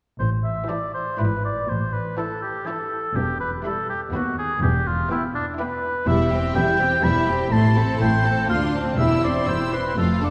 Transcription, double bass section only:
0.20 A1
1.19 G#1
1.69 A1
3.15 E1
4.14 D#2
4.62 E1
6.07 E1
6.56 E1
7.03 E1
7.52 A1
8.01 A1
8.49 D2
8.98 E1
9.48 E1
9.98 F1

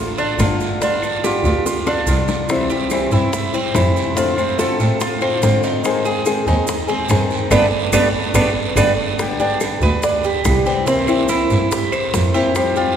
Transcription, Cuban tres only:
Already playing: F4
0.18 D4
0.40 F4
0.82 D4
1.24 G4
1.66 F4
1.87 D4
2.70 G4
3.12 E4
3.54 C4
3.75 E4
4.17 C4
4.59 A4
5.01 F4
5.22 C4
5.64 D#4
6.05 G#4
6.48 D#4
6.89 C4
7.10 D#4
7.51 B3 D4 G4
7.93 B3 D4 G4
8.34 B3 D4 G4
8.76 B3 D4 G4
9.40 D4
9.83 B4
10.04 D4
10.25 G4
10.66 C4
10.87 C4
11.29 E4
11.72 G4
11.92 C5
12.34 G4
12.77 F4

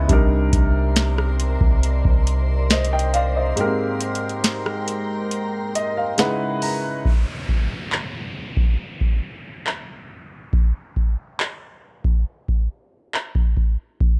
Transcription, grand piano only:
Already playing: C#3 G#3 B3 E4
0.08 C3 G3 D4 D#4
0.13 A#4
2.71 C5 D#5
2.93 D#5 G5
3.15 D5 F5
3.36 C5 D#5
3.56 G#2 G#3 A#3 G4
3.61 A#4
3.65 C4
5.75 D#5
5.97 F5
6.18 C#3 G#3 D#4 E4 B4 F#5
6.63 A#5

